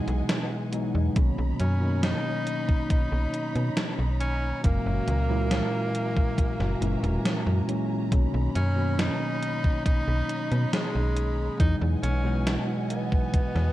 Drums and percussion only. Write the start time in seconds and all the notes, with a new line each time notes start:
0.08 closed hi-hat
0.29 snare, closed hi-hat
0.73 closed hi-hat
1.16 kick, closed hi-hat
1.60 closed hi-hat
2.03 snare, closed hi-hat
2.47 closed hi-hat
2.69 kick
2.90 kick, closed hi-hat
3.34 closed hi-hat
3.55 closed hi-hat
3.77 snare, closed hi-hat
4.21 closed hi-hat
4.64 kick, closed hi-hat
5.08 closed hi-hat
5.51 snare, closed hi-hat
5.95 closed hi-hat
6.17 kick
6.38 kick, closed hi-hat
6.60 snare
6.82 closed hi-hat
7.04 closed hi-hat
7.25 snare, closed hi-hat
7.69 closed hi-hat
8.12 kick, closed hi-hat
8.56 closed hi-hat
8.99 snare, closed hi-hat
9.43 closed hi-hat
9.64 kick
9.86 kick, closed hi-hat
10.29 closed hi-hat
10.51 closed hi-hat
10.73 snare, closed hi-hat
11.16 closed hi-hat
11.60 kick, closed hi-hat
12.03 closed hi-hat
12.47 snare, closed hi-hat
12.90 closed hi-hat
13.12 kick
13.34 kick, closed hi-hat
13.56 snare